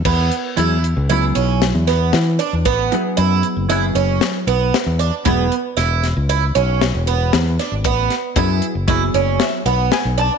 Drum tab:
CC |x---------|----------|----------|----------|
HH |-xxxxxxxxx|xxxxxxxxxx|xxxxxxxxxx|xxxxxxxxxx|
SD |------ooo-|------o-o-|--oo--o-oo|-o--o-o-o-|
BD |o---------|o---------|o---------|o-o-o-----|